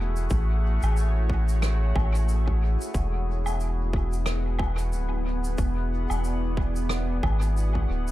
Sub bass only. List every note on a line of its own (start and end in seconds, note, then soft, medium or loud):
0.00 0.28 E1 medium
0.31 0.79 A1 loud
0.83 1.93 A1 medium
1.96 2.77 A1 medium
2.94 4.94 E1 loud
4.92 5.56 D1 medium
5.58 6.07 E1 loud
6.10 7.20 E1 medium
7.23 7.86 G#1 loud
7.89 8.12 D1 medium